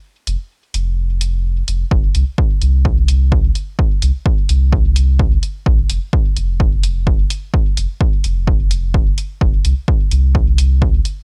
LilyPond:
<<
  \new Staff \with { instrumentName = "Sub bass" } { \clef bass \time 4/4 \key c \phrygian \tempo 4 = 128 r8 f,,8 r8 f,,2 f,,8 | f,,8 c,8 r8 c,2 r8 | r8 c,8 r8 c,2 r8 | bes,,8 f,,8 r8 f,,2 r8 |
r8 f,,8 r8 f,,2 r8 | f,,8 c,8 r8 c,2 r8 | }
  \new DrumStaff \with { instrumentName = "Drums" } \drummode { \time 4/4 r8 hh8 r8 hh8 r8 hh8 r8 hh8 | bd8 hh8 bd8 hh8 bd8 hh8 bd8 hh8 | bd8 hh8 bd8 hh8 bd8 hh8 bd8 hh8 | bd8 hh8 bd8 hh8 bd8 hh8 bd8 hh8 |
bd8 hh8 bd8 hh8 bd8 hh8 bd8 hh8 | bd8 hh8 bd8 hh8 bd8 hh8 bd8 hh8 | }
>>